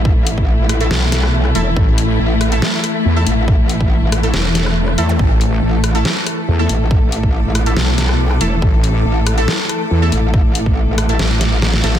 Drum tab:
HH |--x---xx--x---x-|--x---xx--x---x-|--x---xx--x---x-|--x---xx--x---x-|
SD |------r-o-or-r--|------r-o-r-----|------r-o-or-r--|------r-o-r-----|
BD |o--o------------|o---------------|o--o------------|o---------------|

HH |--x---xx--x---x-|--x---xx--x---x-|--x---xx--x---x-|
SD |------r-o-or-r--|------r-o-r-----|------r-o-o-oooo|
BD |o--o------------|o---------------|o--o------------|